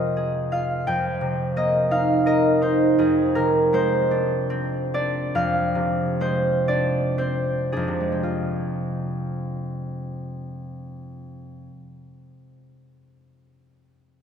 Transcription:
0.00 0.86 F2 soft
0.00 0.89 C3 soft
0.00 0.14 F3 soft
0.00 0.89 G#3 soft
0.00 0.52 F4 soft
0.00 2.61 C5 soft
0.00 1.24 D#5 medium
0.00 0.17 F5 soft
0.17 0.89 G#4 soft
0.52 0.89 F4 soft
0.52 0.89 F5 soft
0.87 2.97 F2 soft
0.87 3.01 G5 medium
1.21 3.00 C3 soft
1.56 3.01 A#3 soft
1.56 2.25 D#5 medium
1.91 2.60 D#4 soft
1.91 2.51 F5 medium
2.26 3.01 A#4 soft
2.26 3.01 D#5 medium
2.62 3.00 D#4 soft
2.62 3.73 C5 medium
2.99 5.34 F2 soft
2.99 6.89 G#4 soft
3.35 5.74 C3 soft
3.35 3.99 A#4 medium
3.73 6.20 G#3 soft
3.73 6.20 C5 medium
4.11 4.93 D4 soft
4.50 7.17 C4 soft
4.94 6.68 D4 soft
4.94 6.67 D5 medium
5.35 7.75 F2 soft
5.35 9.25 F5 medium
5.75 7.87 C3 soft
6.21 7.99 G#3 soft
6.21 7.17 C5 medium
6.68 7.72 D4 soft
6.68 8.26 D5 medium
7.18 8.11 C4 soft
7.18 11.08 C5 soft
7.72 8.26 D4 soft
7.72 11.62 G#4 soft
7.77 11.67 F2 soft
7.88 11.78 C3 soft
8.00 11.45 G#3 soft
8.12 11.50 C4 soft
8.23 11.61 F4 soft

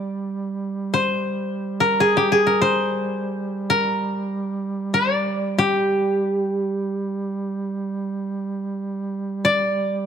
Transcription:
0.00 10.06 G3 soft
0.00 0.99 D5 medium
0.94 2.61 C5 medium
1.80 2.46 A#4 medium
2.00 2.23 G#4 medium
2.17 2.38 G4 medium
2.32 4.29 G#4 medium
2.47 3.69 A#4 medium
2.62 4.33 C5 medium
3.70 5.54 A#4 medium
4.94 6.54 D5 medium
5.59 8.70 G4 medium
9.45 10.06 D5 medium

